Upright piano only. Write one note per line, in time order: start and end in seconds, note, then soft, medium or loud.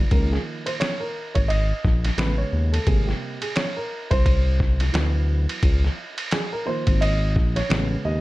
0.00 0.11 C#3 medium
0.00 0.11 F#3 medium
0.00 0.12 B3 medium
0.00 0.12 E4 medium
0.00 0.12 G#4 medium
0.11 1.11 D#3 soft
0.11 1.11 F3 soft
0.11 1.11 A#3 medium
0.11 0.33 A#4 medium
0.32 0.40 G#4 medium
0.66 0.71 C5 medium
0.80 1.01 C#5 loud
1.00 1.36 A#4 medium
1.35 1.40 C#5 medium
1.48 2.20 D#5 loud
2.17 2.83 C#3 medium
2.17 2.84 G#3 soft
2.17 2.84 B3 medium
2.17 2.39 B4 medium
2.38 2.74 C#5 medium
2.73 2.87 A4 medium
2.87 3.35 C3 soft
2.87 3.35 G3 soft
2.87 3.36 A#3 soft
2.87 3.08 G#4 medium
3.07 3.43 G4 medium
3.42 3.57 G#4 medium
3.56 3.77 C#5 medium
3.77 4.12 A#4 medium
4.11 4.76 C5 loud
4.92 5.59 E3 medium
4.92 5.59 F#3 soft
4.92 5.59 B3 medium
6.32 6.53 G#4 medium
6.53 6.67 A#4 medium
6.65 7.14 D#3 soft
6.65 7.14 F3 soft
6.65 7.15 A#3 medium
6.65 7.02 C5 medium
7.01 7.57 D#5 loud
7.56 8.06 C#5 loud
7.69 8.18 C#3 medium
7.69 8.18 G#3 medium
7.69 8.18 B3 medium
8.05 8.21 D#5 medium